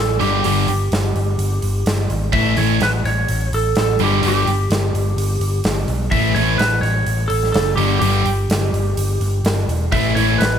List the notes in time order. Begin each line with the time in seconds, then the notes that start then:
Already playing: A1 A4
0.20 G1 G2 D3 G3 G4, open hi-hat
0.44 G1 G2 D3 G3 G4, open hi-hat
0.68 G1, open hi-hat
0.92 G1, snare, open hi-hat
1.16 G1, open hi-hat
1.38 G1, open hi-hat
1.62 G1, open hi-hat
1.86 G1, snare, open hi-hat
2.10 G#1, open hi-hat
2.33 A1 A2 E3 A3 E5, kick, open hi-hat
2.57 A1 A2 E3 A3 C#5, open hi-hat
2.81 A1 B4, snare, open hi-hat
3.05 A1 C#5, snare, open hi-hat
3.28 A1, open hi-hat
3.53 A1 A4, open hi-hat
3.75 A1 A4, snare, open hi-hat
3.99 G1 G2 D3 G3, open hi-hat
4.04 G4
4.23 G1 G2 D3 G3, open hi-hat
4.28 G4
4.47 G1, open hi-hat
4.70 G1, snare, open hi-hat
4.94 G1, open hi-hat
5.17 G1, open hi-hat
5.40 G1, open hi-hat
5.64 G1, snare, open hi-hat
5.88 B1, open hi-hat
6.11 A1 A2 E3 A3 E5, kick, open hi-hat
6.35 A1 A2 E3 A3 C#5, open hi-hat
6.58 A1 B4, snare, open hi-hat
6.81 A1 C#5, snare, open hi-hat
7.06 A1, open hi-hat
7.28 A1 A4, open hi-hat
7.43 snare
7.52 F#1 A4, snare, open hi-hat
7.76 G1 G2 D3 G3 G4, open hi-hat
7.99 G1 G2 D3 G3 G4, open hi-hat
8.26 G1, open hi-hat
8.49 G1, snare, open hi-hat
8.73 G1, open hi-hat
8.97 G1, open hi-hat
9.21 G1, open hi-hat
9.44 G1, snare, open hi-hat
9.68 E1, open hi-hat
9.92 A1 A2 E3 A3 E5, kick, open hi-hat
10.15 A1 A2 E3 A3 C#5, open hi-hat
10.38 A1 B4, snare, open hi-hat